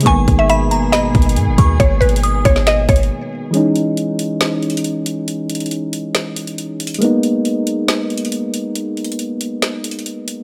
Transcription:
<<
  \new Staff \with { instrumentName = "Synth bell" } { \time 4/4 \key gis \minor \tempo 4 = 138 cis'''4 b''8 ais''8 b''4. cis'''8 | r4 dis'''4 r2 | r1 | r1 |
r1 | r1 | }
  \new Staff \with { instrumentName = "Synth pluck" } { \time 4/4 \key gis \minor gis''8. e''16 e''4 dis''2 | cis''8 b'8 r8 cis''8 dis''8 cis''4. | r1 | r1 |
r1 | r1 | }
  \new Staff \with { instrumentName = "Synth keys" } { \time 4/4 \key gis \minor <dis gis ais b>1~ | <dis gis ais b>1 | <e gis cis' dis'>1~ | <e gis cis' dis'>1 |
<gis ais b dis'>1~ | <gis ais b dis'>1 | }
  \new Staff \with { instrumentName = "String section" } { \time 4/4 \key gis \minor <b, gis'>1~ | <b, gis'>1 | r1 | r1 |
r1 | r1 | }
  \new Staff \with { instrumentName = "808-style bass" } { \clef bass \time 4/4 \key gis \minor gis,,8 gis,,4 g,,8 gis,,8 gis,,8 gis,16 gis,,16 dis,8 | gis,,8 gis,,4 gis,,4 gis,,8 r4 | r1 | r1 |
r1 | r1 | }
  \new DrumStaff \with { instrumentName = "Drums" } \drummode { \time 4/4 <hh bd>8 <hh bd>8 hh8 hh8 \tuplet 3/2 { <hh sn>16 r16 r16 <hh bd>16 hh16 hh16 } hh8 <hh bd>8 | \tuplet 3/2 { <hh bd>16 r16 r16 hh16 hh16 hh16 } hh8 <hh bd>16 sn16 \tuplet 3/2 { <hh sn>16 r16 r16 <hh bd>16 hh16 hh16 } r4 | hh8 hh8 hh8 hh8 \tuplet 3/2 { <hh sn>16 r16 r16 hh16 hh16 hh16 } hh8 hh8 | hh8 hh32 hh32 hh32 hh32 hh8 hh8 <hh sn>8 hh16 hh16 \tuplet 3/2 { hh16 r16 r16 hh16 hh16 hh16 } |
hh8 hh8 hh8 hh8 \tuplet 3/2 { <hh sn>16 r16 r16 hh16 hh16 hh16 } hh8 hh8 | \tuplet 3/2 { hh16 r16 r16 hh16 hh16 hh16 } hh8 hh8 \tuplet 3/2 { <hh sn>16 r16 r16 hh16 hh16 hh16 } hh8 hh8 | }
>>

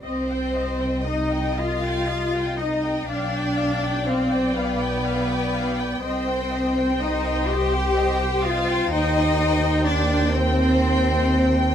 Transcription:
<<
  \new Staff \with { instrumentName = "Viola section" } { \time 6/8 \key c \minor \tempo 4. = 41 << { ees''16 g''16 ees''16 g''16 ees''16 g''16 ees''16 g''16 ees''16 g''16 ees''16 g''16 | f''16 g''16 f''16 g''16 f''16 g''16 f''16 g''16 f''16 g''16 f''16 g''16 | ees''16 g''16 ees''16 g''16 ees''16 g''16 ees''16 g''16 ees''16 g''16 ees''16 g''16 | g''16 g''16 g''16 g''16 g''16 g''16 g''16 g''16 g''16 g''16 g''16 g''16 | } \\ { ees''2. | d''2. | c''2.~ | c''2. | } >> }
  \new Staff \with { instrumentName = "Violin section" } { \time 6/8 \key c \minor ees''2. | g''2.~ | g''2. | g''2. | }
  \new Staff \with { instrumentName = "Violin section" } { \time 6/8 \key c \minor c''4 ees''8 f''4 ees''8 | d''4 c''8 b'4. | c''4 ees''8 g''4 f''8 | ees''4 d''8 c''4. | }
  \new Staff \with { instrumentName = "Cello section" } { \time 6/8 \key c \minor c'4 ees'8 f'4 ees'8 | d'4 c'8 b4. | c'4 ees'8 g'4 f'8 | ees'4 d'8 c'4. | }
  \new Staff \with { instrumentName = "Double bass section" } { \clef bass \time 6/8 \key c \minor c,2. | b,,2. | c,2. | ees,2. | }
>>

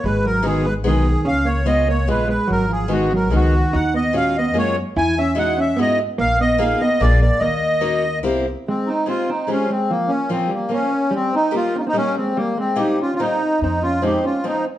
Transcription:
<<
  \new Staff \with { instrumentName = "Accordion" } { \time 3/4 \key ees \minor \tempo 4 = 146 ces''8 bes'8 aes'8 ces''8 aes'4 | f''8 des''8 ees''8 des''8 ces''8 ces''8 | bes'8 aes'8 ges'8 bes'8 ges'4 | ges''8 ees''8 f''8 ees''8 des''8 r8 |
gis''8 e''8 fis''8 e''8 dis''8 r8 | f''8 ees''8 f''8 ees''8 d''8 d''8 | ees''2 r4 | \key f \minor c'8 ees'8 f'8 ees'8 des'8 c'8 |
bes8 des'8 c'8 bes8 des'4 | c'8 ees'8 f'8 ees'32 f'32 ees'16 des'8 c'8 | bes8 c'8 \tuplet 3/2 { g'8. f'8 f'16 } ees'4 | ees'8 f'8 g'8 f'8 ees'8 r8 | }
  \new Staff \with { instrumentName = "Steel-string acoustic guitar" } { \time 3/4 \key ees \minor r4 <aes ces' ees' ges'>8 r8 <aes ces' ees' ges'>8 r8 | r4 <aes ces' des' f'>8 r8 <aes ces' des' f'>8 r8 | r4 <aes ces' ees' ges'>8 r8 <aes ces' ees' ges'>8 r8 | r4 <aes des' f' ges'>8 r8 <aes des' f' ges'>8 r8 |
r4 <gis dis' e' fis'>8 r8 <gis dis' e' fis'>8 r8 | r4 <bes ees' f' aes'>8 r8 <bes d' f' aes'>8 r8 | r4 <bes des' ees' ges'>8 r8 <bes c' e' g'>8 r8 | \key f \minor r4 <aes c' f' g'>8 r8 <aes c' f' g'>8 r8 |
r4 <f bes des' f'>8 r8 <f bes des' f'>8 r8 | r4 <g bes ees' g'>8 r8 <g bes ees' g'>8 r8 | r4 <g bes c' ees'>8 r8 <g bes c' ees'>8 r8 | r4 <f aes c' ees'>8 r8 <f aes c' ees'>8 r8 | }
  \new Staff \with { instrumentName = "Hollow-body jazz guitar" } { \time 3/4 \key ees \minor aes8 ges8 ees8 aes8 ees4 | des'8 bes8 ces'8 bes8 aes8 aes8 | ges8 f8 ees8 ges8 ees4 | ees'8 ces'8 des'8 ces'8 bes8 r8 |
e'8 des'8 dis'8 des'8 b8 r8 | bes8 ces'8 bes8 ces'8 bes8 bes8 | bes2 r4 | \key f \minor aes8 c'8 c'8 c'8 aes8 aes8 |
f8 bes8 f8 g8 bes4 | g8 c'8 bes8 c'32 des'32 c'16 bes8 aes8 | g8 aes8 \tuplet 3/2 { ees'8. des'8 des'16 } c'4 | c'8 des'8 ees'8 des'8 c'8 r8 | }
  \new Staff \with { instrumentName = "Upright bass" } { \clef bass \time 3/4 \key ees \minor aes,,2 ces,4 | des,2 bes,,4 | aes,,2 des,4 | ees,2 ges,4 |
e,2 gis,4 | bes,,2 bes,,4 | ees,2 c,4 | \key f \minor r2. |
r2. | r2. | r2. | f,2 r4 | }
>>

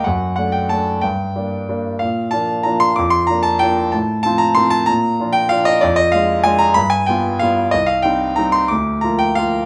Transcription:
<<
  \new Staff \with { instrumentName = "Grand piano" } { \time 3/4 \key bes \major \tempo 4 = 187 fis''4 fis''8 g''8 a''4 | g''2. | f''4 a''4 bes''8 c'''8 | d'''8 c'''8 bes''8 a''8 g''4 |
a''4 a''8 bes''8 c'''8 a''8 | bes''4. g''8 f''8 ees''8 | \key c \minor d''8 ees''8 f''4 aes''8 bes''8 | b''8 aes''8 g''4 f''4 |
ees''8 f''8 g''4 bes''8 c'''8 | d'''4 bes''8 g''8 f''4 | }
  \new Staff \with { instrumentName = "Grand piano" } { \time 3/4 \key bes \major fis,4 <a d'>4 <a d'>4 | g,4 <g bes d'>4 <g bes d'>4 | bes,4 <f bes d'>4 <f bes d'>4 | f,4 <f bes d'>4 <f bes d'>4 |
a,4 <f c' f'>4 <f c' f'>4 | bes,4 <f d' f'>4 <f d' f'>4 | \key c \minor f,4 <aes d' f'>4 <aes d' f'>4 | g,4 <g b f'>4 <g b f'>4 |
c,4 <g c' ees'>4 <g c' ees'>4 | d,4 <f bes f'>4 <f bes f'>4 | }
>>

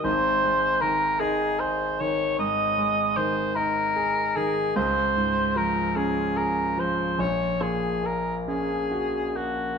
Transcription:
<<
  \new Staff \with { instrumentName = "Cor anglais" } { \time 12/8 \key aes \mixolydian \tempo 4. = 50 c''4 bes'8 aes'8 c''8 des''8 ees''4 c''8 bes'4 aes'8 | c''4 bes'8 aes'8 bes'8 c''8 des''8 aes'8 bes'8 aes'4 ges'8 | }
  \new Staff \with { instrumentName = "Grand piano" } { \clef bass \time 12/8 \key aes \mixolydian <aes,, aes,>8 aes8 ees8 ees'8 aes'8 ees8 aes,8 aes8 ees8 ees'8 aes'8 ees8 | des,8 aes,8 f8 des'8 aes'8 f8 bes,,8 bes,8 bes8 des'8 ges'8 bes8 | }
>>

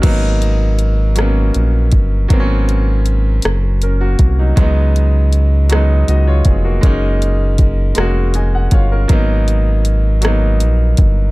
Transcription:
<<
  \new Staff \with { instrumentName = "Grand piano" } { \time 6/8 \key gis \dorian \tempo 4. = 53 <cis' ais'>16 r2 r8. | r2 <cis' ais'>16 <ais fis'>8 <fis dis'>16~ | <fis dis'>16 r4. r16 <fis' dis''>16 <eis' cis''>16 <b gis'>16 <ais fis'>16~ | <ais fis'>16 r4. r16 <fis' dis'' gis''>16 fis''16 <eis' cis'' eis''>16 <cis' ais'>16~ |
<cis' ais'>16 r2 r8. | }
  \new Staff \with { instrumentName = "Grand piano" } { \time 6/8 \key gis \dorian <fis ais b dis'>4 r8 <fis ais b cis'>4 r8 | <fis ais b bis cis'>4 r2 | <fis gis b dis'>4 r8 <fis gis b dis'>4 r8 | <gis ais cis' dis'>4 r8 <gis ais cis' fis'>4 r8 |
<fis ais b dis'>4 r8 <fis ais b dis'>4 r8 | }
  \new Staff \with { instrumentName = "Analog synth bass" } { \clef bass \time 6/8 \key gis \dorian gis,,2 ais,,8 g,,8 | gis,,4. fis,,4 bis,,8 | cis,2 cis,8 eis,,8 | fis,,4. eis,,4 g,,8 |
gis,,2 ais,,8 g,,8 | }
  \new DrumStaff \with { instrumentName = "Drums" } \drummode { \time 6/8 <cymc hh bd>8 hh8 hh8 <hh ss>8 hh8 <hh bd>8 | <hh bd>8 hh8 hh8 <hh ss>8 hh8 <hh bd>8 | <hh bd>8 hh8 hh8 <hh ss>8 hh8 <hh bd>8 | <hh bd>8 hh8 <hh bd>8 <hh ss>8 hh8 <hh bd>8 |
<hh bd>8 hh8 hh8 <hh ss>8 hh8 <hh bd>8 | }
>>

